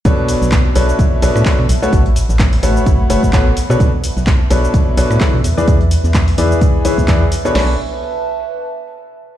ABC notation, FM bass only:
X:1
M:4/4
L:1/16
Q:"Swing 16ths" 1/4=128
K:Bdor
V:1 name="FM bass" clef=bass
B,,,3 B,,,3 B,,, z B,,, z B,,, A,, z B,, B,,, z | A,,,3 A,,,3 A,,, z A,,, z F,,, A,,,3 z B,, | B,,,3 B,,,3 B,,, z B,,, z B,,, A,, z B,, E,, z | E,,3 E,,3 E,, z4 E,,3 z2 |
B,,,2 z12 z2 |]